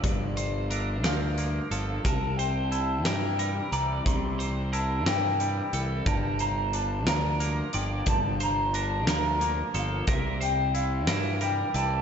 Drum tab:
HH |xxxxxx|xxxxxx|xxxxxx|xxxxxx|
SD |---o--|---o--|---o--|---o--|
BD |o-----|o-----|o-----|o-----|

HH |xxxxxx|xxxxxx|
SD |---o--|---o--|
BD |o-----|o-----|